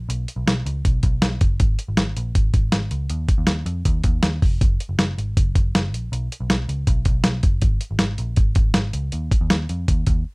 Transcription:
0.09 B1, closed hi-hat
0.28 closed hi-hat
0.36 B1
0.47 B1, snare, closed hi-hat
0.66 C#2, closed hi-hat
0.85 B1, kick, closed hi-hat
1.03 B1, kick, closed hi-hat
1.22 B1, snare, closed hi-hat
1.41 F#1, kick, closed hi-hat
1.60 G#1, kick, closed hi-hat
1.79 closed hi-hat
1.88 G#1
1.97 G#1, snare, closed hi-hat
2.17 A#1, closed hi-hat
2.35 G#1, kick, closed hi-hat
2.54 G#1, kick, closed hi-hat
2.72 G#1, snare, closed hi-hat
2.91 C#2, closed hi-hat
3.10 D#2, closed hi-hat
3.29 kick, closed hi-hat
3.38 D#2
3.47 D#2, snare, closed hi-hat
3.66 F2, closed hi-hat
3.85 D#2, kick, closed hi-hat
4.04 D#2, kick, closed hi-hat
4.23 D#2, snare, closed hi-hat
4.42 F1, kick, open hi-hat
4.61 F#1, kick, closed hi-hat
4.80 closed hi-hat
4.89 F#1
4.98 F#1, snare, closed hi-hat
5.18 G#1, closed hi-hat
5.37 F#1, kick, closed hi-hat
5.55 F#1, kick, closed hi-hat
5.75 F#1, snare, closed hi-hat
5.93 A#1, closed hi-hat
6.12 B1, closed hi-hat
6.32 closed hi-hat
6.40 B1
6.50 B1, snare, closed hi-hat
6.69 C#2, closed hi-hat
6.87 B1, kick, closed hi-hat
7.05 B1, kick, closed hi-hat
7.24 B1, snare, closed hi-hat
7.43 F#1, kick, closed hi-hat
7.62 G#1, kick, closed hi-hat
7.81 closed hi-hat
7.91 G#1
7.99 G#1, snare, closed hi-hat
8.18 A#1, closed hi-hat
8.36 G#1, kick, closed hi-hat
8.55 G#1, kick, closed hi-hat
8.74 G#1, snare, closed hi-hat
8.93 C#2, closed hi-hat
9.12 D#2, closed hi-hat
9.31 kick, closed hi-hat
9.41 D#2
9.50 D#2, snare, closed hi-hat
9.69 F2, closed hi-hat
9.88 D#2, kick, closed hi-hat
10.07 D#2, kick, closed hi-hat

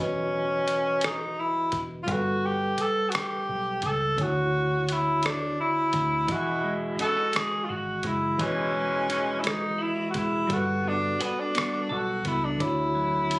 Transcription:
Already playing: E3 D#5
0.00 E1 C#4 F#4 B4
0.68 closed hi-hat
1.01 cross-stick, closed hi-hat
1.06 D#4
1.40 E4
1.72 E1, kick, closed hi-hat
2.03 G3 F4
2.08 G1 F#4 A4 F#5, kick, closed hi-hat
2.14 B4
2.46 G4
2.78 A4, muted fingered electric bass stroke, closed hi-hat
3.09 F#4, closed hi-hat
3.15 G4, cross-stick
3.49 B1
3.82 C#2 A4, kick, closed hi-hat
4.17 D2 D3 C#5, kick, closed hi-hat
4.21 E4 F#4
4.89 E4, closed hi-hat
5.23 D4, cross-stick, closed hi-hat
5.60 E4
5.93 D2, kick, closed hi-hat
6.27 E1 B2 E3 G#3 E4 F#4 D#5, kick, closed hi-hat
6.32 F#4 G#5
6.64 G#3
6.99 B3 C#4 D#4 F#4 A4, muted fingered electric bass stroke, closed hi-hat
7.17 D#4
7.33 G#3 G#4, cross-stick, closed hi-hat
7.64 F4
7.69 G#1 F#4
8.03 F#1 G#3 E4, kick, closed hi-hat
8.38 E1 B2 E3 G#3 D#5, kick, closed hi-hat
8.42 C#4 F#4 B4
8.74 G#3
9.09 B2 E3 G#3 D#4, closed hi-hat
9.40 G#3 E4
9.44 D#4, cross-stick, closed hi-hat
9.78 E4
9.96 F#4
10.10 G#3 F#4, closed hi-hat
10.15 E1 E4, kick
10.48 G1 G3 F#4, kick, closed hi-hat
10.52 F#4 A4 B4
10.84 B3
10.88 D4
11.19 B3 F#4, muted fingered electric bass stroke, closed hi-hat
11.40 D4
11.55 B3, cross-stick, closed hi-hat
11.89 B1 F#4 A4
12.25 C#2 B3 E4, kick, closed hi-hat
12.44 D4
12.58 D2 D3 E4 C#5, kick, closed hi-hat
12.63 E4 F#4
12.95 F#3
13.30 C#4, closed hi-hat

